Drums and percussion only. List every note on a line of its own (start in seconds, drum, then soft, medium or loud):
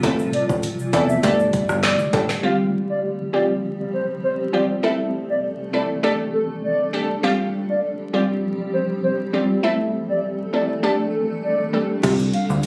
0.03 kick loud
0.03 closed hi-hat medium
0.03 shaker medium
0.19 shaker medium
0.33 closed hi-hat medium
0.49 kick loud
0.49 shaker medium
0.63 closed hi-hat medium
0.63 shaker medium
0.79 shaker medium
0.93 closed hi-hat medium
0.93 shaker medium
1.09 shaker medium
1.23 kick medium
1.23 closed hi-hat medium
1.23 shaker medium
1.40 shaker medium
1.53 kick loud
1.53 closed hi-hat medium
1.53 shaker medium
1.69 cross-stick medium
1.69 shaker medium
1.83 snare loud
1.83 clap medium
1.83 closed hi-hat medium
1.83 shaker medium
1.99 shaker medium
2.13 kick medium
2.13 closed hi-hat medium
2.13 high timbale medium
2.13 shaker soft
2.29 snare medium
2.29 shaker medium
12.03 kick loud
12.03 closed hi-hat medium
12.03 crash loud
12.03 shaker medium
12.19 shaker medium
12.33 closed hi-hat medium
12.50 shaker medium
12.63 closed hi-hat medium
12.63 shaker medium